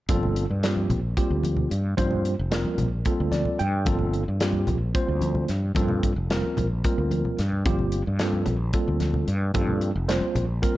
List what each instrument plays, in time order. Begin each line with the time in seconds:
0.09 fretless electric bass G1, tine electric piano G3 A#3 C4 F4 A4, kick, closed hi-hat, high conga
0.23 low conga
0.36 closed hi-hat
0.50 fretless electric bass G2, low conga
0.63 tine electric piano G3 A#3 C4 F4 G4, snare, closed hi-hat
0.76 high conga, low conga
0.90 fretless electric bass A#1, closed hi-hat, low conga
1.17 tine electric piano G3 A#3 C4 F4 G4, kick, closed hi-hat
1.30 fretless electric bass D2, low conga
1.43 closed hi-hat, high conga
1.57 low conga
1.70 fretless electric bass G2, closed hi-hat, low conga
1.83 low conga
1.97 fretless electric bass G2, tine electric piano G3 A#3 C4 F4 C5, kick, closed hi-hat, high conga
2.11 low conga
2.25 closed hi-hat
2.38 fretless electric bass F1, low conga
2.51 tine electric piano G3 A#3 C4 F4 A#4, snare, closed hi-hat
2.65 high conga, low conga
2.78 fretless electric bass A#1, closed hi-hat, low conga
3.05 tine electric piano G3 A#3 C4 F4 A4, kick, closed hi-hat, low conga
3.19 fretless electric bass D2, low conga
3.32 tine electric piano D5, snare, closed hi-hat, high conga
3.45 low conga
3.59 fretless electric bass G2, tine electric piano G5, closed hi-hat
3.72 low conga
3.85 fretless electric bass G1, tine electric piano G3 A#3 C4 F4 A4, kick, closed hi-hat, high conga
3.99 low conga
4.14 closed hi-hat
4.26 fretless electric bass G2, low conga
4.40 tine electric piano G3 A#3 C4 F4 G4, snare, closed hi-hat
4.53 high conga, low conga
4.67 fretless electric bass A#1, closed hi-hat, low conga
4.94 tine electric piano G3 A#3 C4 F4 C5, kick, closed hi-hat
5.08 fretless electric bass D2
5.21 closed hi-hat, high conga
5.35 low conga
5.48 fretless electric bass G2, snare, closed hi-hat, low conga
5.63 low conga
5.75 fretless electric bass G2, tine electric piano G3 A#3 C4 F4 A4, kick, closed hi-hat, high conga
5.88 low conga
6.03 kick, closed hi-hat
6.16 fretless electric bass F1, low conga
6.30 tine electric piano G3 A#3 C4 F4 A#4, snare, closed hi-hat
6.43 high conga, low conga
6.57 fretless electric bass A#1, closed hi-hat, low conga
6.84 tine electric piano G3 A#3 C4 F4 A#4, kick, closed hi-hat
6.98 fretless electric bass D2
7.11 closed hi-hat, high conga
7.25 low conga
7.39 fretless electric bass G2, snare, closed hi-hat
7.52 low conga
7.65 fretless electric bass G1, tine electric piano G3 A#3 C4 F4 G4, kick, closed hi-hat, high conga
7.79 low conga
7.92 closed hi-hat
8.06 fretless electric bass G2, low conga
8.19 tine electric piano G3 A#3 C4 F4 A4, snare, closed hi-hat
8.33 high conga, low conga
8.46 fretless electric bass A#1, closed hi-hat, low conga
8.73 tine electric piano G3 A#3 C4 F4 A4, kick, closed hi-hat
8.88 fretless electric bass D2, low conga
9.00 snare, closed hi-hat, high conga
9.14 low conga
9.27 fretless electric bass G2, closed hi-hat, low conga
9.41 low conga
9.54 fretless electric bass G2, tine electric piano G3 A#3 C4 F4 A4, kick, closed hi-hat, high conga
9.67 low conga
9.81 closed hi-hat
9.94 fretless electric bass F1, low conga
10.08 tine electric piano G3 A#3 C4 F4 C5, snare, closed hi-hat
10.21 high conga, low conga
10.35 fretless electric bass A#1, closed hi-hat, low conga
10.62 tine electric piano G3 A#3 C4 F4 A#4, kick, closed hi-hat